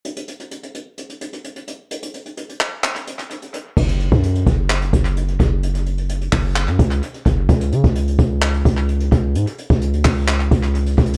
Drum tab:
CC |------------------------------------------------|------------------------------------------------|x-----------------------------------------------|------------------------------------------------|
HH |x--x--x--x--x--x--x-----x--x--x--x--x--x--x-----|x--x--x--x--x--x--x-----x--x--x--x--x--x--x-----|---x--x--x--x--x--x-----x--x--x--x--x--x--x-----|x--x--x--x--x--x--o-----x--x--x--x--x--x--x-----|
CP |------------------------------------------------|------------------x-----x-----------------------|------------------------x-----------------------|------------------x-----x-----------------------|
BD |------------------------------------------------|------------------------------------------------|o--------o--------o-----------o-----------o-----|------------------o-----------o-----------o-----|

CC |------------------------------------------------|------------------------------------------------|
HH |x--x--x--x--x--x--x-----x--x--x--x--x--x--x-----|x--x--x--x--x--x--o-----x--x--x--x--x--x--x-x-x-|
CP |------------------------x-----------------------|------------------x-----x-----------------------|
BD |o--------o--------o-----------o-----------o-----|---------o--------o-----------o-----------o-----|